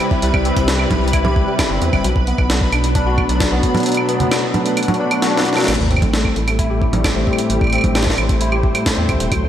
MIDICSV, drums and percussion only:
0, 0, Header, 1, 2, 480
1, 0, Start_track
1, 0, Tempo, 454545
1, 239, Time_signature, 4, 2, 24, 8
1, 10018, End_track
2, 0, Start_track
2, 0, Title_t, "Drums"
2, 118, Note_on_c, 9, 36, 114
2, 224, Note_off_c, 9, 36, 0
2, 236, Note_on_c, 9, 42, 62
2, 342, Note_off_c, 9, 42, 0
2, 357, Note_on_c, 9, 75, 81
2, 358, Note_on_c, 9, 36, 116
2, 463, Note_off_c, 9, 75, 0
2, 464, Note_off_c, 9, 36, 0
2, 477, Note_on_c, 9, 42, 37
2, 582, Note_off_c, 9, 42, 0
2, 597, Note_on_c, 9, 42, 49
2, 598, Note_on_c, 9, 36, 106
2, 703, Note_off_c, 9, 42, 0
2, 704, Note_off_c, 9, 36, 0
2, 718, Note_on_c, 9, 38, 112
2, 718, Note_on_c, 9, 42, 62
2, 823, Note_off_c, 9, 38, 0
2, 823, Note_off_c, 9, 42, 0
2, 837, Note_on_c, 9, 75, 54
2, 942, Note_off_c, 9, 75, 0
2, 956, Note_on_c, 9, 42, 34
2, 956, Note_on_c, 9, 64, 99
2, 959, Note_on_c, 9, 36, 115
2, 1062, Note_off_c, 9, 42, 0
2, 1062, Note_off_c, 9, 64, 0
2, 1064, Note_off_c, 9, 36, 0
2, 1137, Note_on_c, 9, 42, 50
2, 1196, Note_off_c, 9, 42, 0
2, 1196, Note_on_c, 9, 42, 61
2, 1196, Note_on_c, 9, 75, 77
2, 1199, Note_on_c, 9, 36, 104
2, 1302, Note_off_c, 9, 42, 0
2, 1302, Note_off_c, 9, 75, 0
2, 1304, Note_off_c, 9, 36, 0
2, 1317, Note_on_c, 9, 64, 98
2, 1423, Note_off_c, 9, 64, 0
2, 1438, Note_on_c, 9, 36, 116
2, 1544, Note_off_c, 9, 36, 0
2, 1678, Note_on_c, 9, 38, 112
2, 1678, Note_on_c, 9, 42, 66
2, 1678, Note_on_c, 9, 75, 56
2, 1679, Note_on_c, 9, 36, 103
2, 1784, Note_off_c, 9, 36, 0
2, 1784, Note_off_c, 9, 38, 0
2, 1784, Note_off_c, 9, 42, 0
2, 1784, Note_off_c, 9, 75, 0
2, 1918, Note_on_c, 9, 42, 51
2, 2024, Note_off_c, 9, 42, 0
2, 2038, Note_on_c, 9, 75, 80
2, 2039, Note_on_c, 9, 36, 119
2, 2143, Note_off_c, 9, 75, 0
2, 2144, Note_off_c, 9, 36, 0
2, 2158, Note_on_c, 9, 42, 63
2, 2264, Note_off_c, 9, 42, 0
2, 2279, Note_on_c, 9, 36, 111
2, 2384, Note_off_c, 9, 36, 0
2, 2398, Note_on_c, 9, 42, 36
2, 2504, Note_off_c, 9, 42, 0
2, 2516, Note_on_c, 9, 75, 51
2, 2519, Note_on_c, 9, 36, 112
2, 2622, Note_off_c, 9, 75, 0
2, 2624, Note_off_c, 9, 36, 0
2, 2638, Note_on_c, 9, 38, 110
2, 2638, Note_on_c, 9, 42, 62
2, 2743, Note_off_c, 9, 38, 0
2, 2743, Note_off_c, 9, 42, 0
2, 2759, Note_on_c, 9, 36, 96
2, 2864, Note_off_c, 9, 36, 0
2, 2877, Note_on_c, 9, 42, 37
2, 2877, Note_on_c, 9, 75, 81
2, 2983, Note_off_c, 9, 42, 0
2, 2983, Note_off_c, 9, 75, 0
2, 2997, Note_on_c, 9, 42, 52
2, 3103, Note_off_c, 9, 42, 0
2, 3116, Note_on_c, 9, 42, 66
2, 3119, Note_on_c, 9, 36, 120
2, 3222, Note_off_c, 9, 42, 0
2, 3224, Note_off_c, 9, 36, 0
2, 3356, Note_on_c, 9, 75, 55
2, 3359, Note_on_c, 9, 36, 101
2, 3462, Note_off_c, 9, 75, 0
2, 3464, Note_off_c, 9, 36, 0
2, 3477, Note_on_c, 9, 42, 55
2, 3582, Note_off_c, 9, 42, 0
2, 3595, Note_on_c, 9, 38, 115
2, 3595, Note_on_c, 9, 42, 68
2, 3598, Note_on_c, 9, 36, 119
2, 3701, Note_off_c, 9, 38, 0
2, 3701, Note_off_c, 9, 42, 0
2, 3704, Note_off_c, 9, 36, 0
2, 3835, Note_on_c, 9, 42, 52
2, 3838, Note_on_c, 9, 36, 94
2, 3941, Note_off_c, 9, 42, 0
2, 3943, Note_off_c, 9, 36, 0
2, 3955, Note_on_c, 9, 42, 27
2, 3955, Note_on_c, 9, 64, 91
2, 3985, Note_off_c, 9, 42, 0
2, 3985, Note_on_c, 9, 42, 32
2, 4015, Note_off_c, 9, 42, 0
2, 4015, Note_on_c, 9, 42, 35
2, 4046, Note_off_c, 9, 42, 0
2, 4046, Note_on_c, 9, 42, 38
2, 4061, Note_off_c, 9, 64, 0
2, 4076, Note_off_c, 9, 42, 0
2, 4076, Note_on_c, 9, 42, 65
2, 4106, Note_off_c, 9, 42, 0
2, 4106, Note_on_c, 9, 42, 43
2, 4137, Note_off_c, 9, 42, 0
2, 4137, Note_on_c, 9, 42, 47
2, 4166, Note_off_c, 9, 42, 0
2, 4166, Note_on_c, 9, 42, 55
2, 4195, Note_on_c, 9, 75, 55
2, 4271, Note_off_c, 9, 42, 0
2, 4301, Note_off_c, 9, 75, 0
2, 4316, Note_on_c, 9, 42, 39
2, 4422, Note_off_c, 9, 42, 0
2, 4436, Note_on_c, 9, 42, 53
2, 4436, Note_on_c, 9, 64, 89
2, 4542, Note_off_c, 9, 42, 0
2, 4542, Note_off_c, 9, 64, 0
2, 4557, Note_on_c, 9, 38, 115
2, 4557, Note_on_c, 9, 42, 65
2, 4557, Note_on_c, 9, 75, 82
2, 4663, Note_off_c, 9, 38, 0
2, 4663, Note_off_c, 9, 42, 0
2, 4663, Note_off_c, 9, 75, 0
2, 4797, Note_on_c, 9, 42, 37
2, 4797, Note_on_c, 9, 64, 97
2, 4903, Note_off_c, 9, 42, 0
2, 4903, Note_off_c, 9, 64, 0
2, 4917, Note_on_c, 9, 42, 54
2, 5023, Note_off_c, 9, 42, 0
2, 5037, Note_on_c, 9, 42, 64
2, 5037, Note_on_c, 9, 75, 56
2, 5097, Note_off_c, 9, 42, 0
2, 5097, Note_on_c, 9, 42, 52
2, 5143, Note_off_c, 9, 75, 0
2, 5157, Note_off_c, 9, 42, 0
2, 5157, Note_on_c, 9, 42, 44
2, 5157, Note_on_c, 9, 64, 98
2, 5217, Note_off_c, 9, 42, 0
2, 5217, Note_on_c, 9, 42, 39
2, 5262, Note_off_c, 9, 64, 0
2, 5323, Note_off_c, 9, 42, 0
2, 5397, Note_on_c, 9, 42, 55
2, 5397, Note_on_c, 9, 75, 86
2, 5503, Note_off_c, 9, 42, 0
2, 5503, Note_off_c, 9, 75, 0
2, 5516, Note_on_c, 9, 38, 73
2, 5516, Note_on_c, 9, 42, 68
2, 5622, Note_off_c, 9, 38, 0
2, 5622, Note_off_c, 9, 42, 0
2, 5676, Note_on_c, 9, 38, 75
2, 5700, Note_off_c, 9, 38, 0
2, 5700, Note_on_c, 9, 38, 63
2, 5724, Note_off_c, 9, 38, 0
2, 5724, Note_on_c, 9, 38, 51
2, 5749, Note_off_c, 9, 38, 0
2, 5749, Note_on_c, 9, 38, 43
2, 5757, Note_on_c, 9, 42, 52
2, 5774, Note_off_c, 9, 38, 0
2, 5774, Note_on_c, 9, 38, 35
2, 5837, Note_off_c, 9, 38, 0
2, 5837, Note_on_c, 9, 38, 45
2, 5863, Note_off_c, 9, 42, 0
2, 5868, Note_off_c, 9, 38, 0
2, 5868, Note_on_c, 9, 38, 52
2, 5877, Note_on_c, 9, 42, 29
2, 5877, Note_on_c, 9, 75, 57
2, 5897, Note_off_c, 9, 38, 0
2, 5897, Note_on_c, 9, 38, 55
2, 5918, Note_off_c, 9, 42, 0
2, 5918, Note_on_c, 9, 42, 41
2, 5927, Note_off_c, 9, 38, 0
2, 5927, Note_on_c, 9, 38, 60
2, 5958, Note_off_c, 9, 38, 0
2, 5958, Note_off_c, 9, 42, 0
2, 5958, Note_on_c, 9, 38, 68
2, 5958, Note_on_c, 9, 42, 50
2, 5983, Note_off_c, 9, 75, 0
2, 5988, Note_off_c, 9, 38, 0
2, 5988, Note_on_c, 9, 38, 75
2, 5998, Note_off_c, 9, 42, 0
2, 5998, Note_on_c, 9, 42, 64
2, 5998, Note_on_c, 9, 49, 89
2, 5998, Note_on_c, 9, 75, 52
2, 6017, Note_off_c, 9, 38, 0
2, 6017, Note_on_c, 9, 38, 75
2, 6049, Note_off_c, 9, 38, 0
2, 6049, Note_on_c, 9, 38, 79
2, 6104, Note_off_c, 9, 42, 0
2, 6104, Note_off_c, 9, 49, 0
2, 6104, Note_off_c, 9, 75, 0
2, 6117, Note_on_c, 9, 36, 49
2, 6154, Note_off_c, 9, 38, 0
2, 6157, Note_off_c, 9, 36, 0
2, 6157, Note_on_c, 9, 36, 55
2, 6197, Note_off_c, 9, 36, 0
2, 6197, Note_on_c, 9, 36, 63
2, 6237, Note_off_c, 9, 36, 0
2, 6237, Note_on_c, 9, 36, 70
2, 6238, Note_on_c, 9, 42, 36
2, 6277, Note_off_c, 9, 36, 0
2, 6277, Note_on_c, 9, 36, 77
2, 6298, Note_on_c, 9, 75, 81
2, 6317, Note_off_c, 9, 36, 0
2, 6317, Note_on_c, 9, 36, 87
2, 6344, Note_off_c, 9, 42, 0
2, 6358, Note_off_c, 9, 36, 0
2, 6358, Note_on_c, 9, 36, 122
2, 6359, Note_on_c, 9, 42, 49
2, 6359, Note_on_c, 9, 64, 82
2, 6404, Note_off_c, 9, 75, 0
2, 6463, Note_off_c, 9, 36, 0
2, 6465, Note_off_c, 9, 42, 0
2, 6465, Note_off_c, 9, 64, 0
2, 6479, Note_on_c, 9, 38, 108
2, 6585, Note_off_c, 9, 38, 0
2, 6598, Note_on_c, 9, 36, 95
2, 6599, Note_on_c, 9, 75, 52
2, 6703, Note_off_c, 9, 36, 0
2, 6704, Note_off_c, 9, 75, 0
2, 6718, Note_on_c, 9, 42, 38
2, 6824, Note_off_c, 9, 42, 0
2, 6840, Note_on_c, 9, 42, 53
2, 6840, Note_on_c, 9, 75, 78
2, 6945, Note_off_c, 9, 42, 0
2, 6945, Note_off_c, 9, 75, 0
2, 6958, Note_on_c, 9, 36, 112
2, 6958, Note_on_c, 9, 42, 65
2, 7063, Note_off_c, 9, 36, 0
2, 7064, Note_off_c, 9, 42, 0
2, 7198, Note_on_c, 9, 36, 102
2, 7304, Note_off_c, 9, 36, 0
2, 7319, Note_on_c, 9, 42, 55
2, 7319, Note_on_c, 9, 64, 86
2, 7425, Note_off_c, 9, 42, 0
2, 7425, Note_off_c, 9, 64, 0
2, 7438, Note_on_c, 9, 36, 119
2, 7439, Note_on_c, 9, 38, 116
2, 7439, Note_on_c, 9, 42, 65
2, 7439, Note_on_c, 9, 75, 79
2, 7544, Note_off_c, 9, 36, 0
2, 7544, Note_off_c, 9, 38, 0
2, 7544, Note_off_c, 9, 42, 0
2, 7544, Note_off_c, 9, 75, 0
2, 7678, Note_on_c, 9, 36, 91
2, 7739, Note_on_c, 9, 75, 53
2, 7784, Note_off_c, 9, 36, 0
2, 7799, Note_on_c, 9, 42, 61
2, 7844, Note_off_c, 9, 75, 0
2, 7904, Note_off_c, 9, 42, 0
2, 7919, Note_on_c, 9, 42, 66
2, 8024, Note_off_c, 9, 42, 0
2, 8038, Note_on_c, 9, 36, 127
2, 8040, Note_on_c, 9, 75, 35
2, 8069, Note_off_c, 9, 75, 0
2, 8069, Note_on_c, 9, 75, 41
2, 8099, Note_off_c, 9, 75, 0
2, 8099, Note_on_c, 9, 75, 45
2, 8129, Note_off_c, 9, 75, 0
2, 8129, Note_on_c, 9, 75, 47
2, 8144, Note_off_c, 9, 36, 0
2, 8159, Note_off_c, 9, 75, 0
2, 8159, Note_on_c, 9, 42, 37
2, 8159, Note_on_c, 9, 75, 57
2, 8188, Note_off_c, 9, 75, 0
2, 8188, Note_on_c, 9, 75, 60
2, 8219, Note_off_c, 9, 75, 0
2, 8219, Note_on_c, 9, 75, 63
2, 8248, Note_off_c, 9, 75, 0
2, 8248, Note_on_c, 9, 75, 68
2, 8264, Note_off_c, 9, 42, 0
2, 8278, Note_on_c, 9, 36, 108
2, 8278, Note_on_c, 9, 42, 49
2, 8278, Note_on_c, 9, 64, 81
2, 8354, Note_off_c, 9, 75, 0
2, 8384, Note_off_c, 9, 36, 0
2, 8384, Note_off_c, 9, 42, 0
2, 8384, Note_off_c, 9, 64, 0
2, 8397, Note_on_c, 9, 38, 111
2, 8397, Note_on_c, 9, 42, 67
2, 8397, Note_on_c, 9, 75, 52
2, 8477, Note_off_c, 9, 38, 0
2, 8477, Note_on_c, 9, 38, 94
2, 8503, Note_off_c, 9, 42, 0
2, 8503, Note_off_c, 9, 75, 0
2, 8518, Note_on_c, 9, 36, 113
2, 8556, Note_off_c, 9, 38, 0
2, 8556, Note_on_c, 9, 38, 74
2, 8624, Note_off_c, 9, 36, 0
2, 8638, Note_on_c, 9, 42, 38
2, 8638, Note_on_c, 9, 75, 76
2, 8662, Note_off_c, 9, 38, 0
2, 8743, Note_off_c, 9, 42, 0
2, 8743, Note_off_c, 9, 75, 0
2, 8758, Note_on_c, 9, 36, 107
2, 8758, Note_on_c, 9, 42, 56
2, 8863, Note_off_c, 9, 42, 0
2, 8864, Note_off_c, 9, 36, 0
2, 8878, Note_on_c, 9, 42, 69
2, 8984, Note_off_c, 9, 42, 0
2, 8997, Note_on_c, 9, 75, 55
2, 9103, Note_off_c, 9, 75, 0
2, 9118, Note_on_c, 9, 36, 116
2, 9224, Note_off_c, 9, 36, 0
2, 9238, Note_on_c, 9, 42, 53
2, 9238, Note_on_c, 9, 75, 82
2, 9344, Note_off_c, 9, 42, 0
2, 9344, Note_off_c, 9, 75, 0
2, 9357, Note_on_c, 9, 38, 122
2, 9357, Note_on_c, 9, 42, 65
2, 9359, Note_on_c, 9, 36, 112
2, 9387, Note_off_c, 9, 42, 0
2, 9387, Note_on_c, 9, 42, 54
2, 9418, Note_off_c, 9, 42, 0
2, 9418, Note_on_c, 9, 42, 43
2, 9448, Note_off_c, 9, 42, 0
2, 9448, Note_on_c, 9, 42, 36
2, 9463, Note_off_c, 9, 38, 0
2, 9464, Note_off_c, 9, 36, 0
2, 9554, Note_off_c, 9, 42, 0
2, 9598, Note_on_c, 9, 42, 52
2, 9598, Note_on_c, 9, 75, 53
2, 9599, Note_on_c, 9, 36, 110
2, 9704, Note_off_c, 9, 42, 0
2, 9704, Note_off_c, 9, 75, 0
2, 9705, Note_off_c, 9, 36, 0
2, 9718, Note_on_c, 9, 42, 62
2, 9823, Note_off_c, 9, 42, 0
2, 9838, Note_on_c, 9, 42, 65
2, 9838, Note_on_c, 9, 75, 74
2, 9839, Note_on_c, 9, 36, 102
2, 9944, Note_off_c, 9, 42, 0
2, 9944, Note_off_c, 9, 75, 0
2, 9945, Note_off_c, 9, 36, 0
2, 10018, End_track
0, 0, End_of_file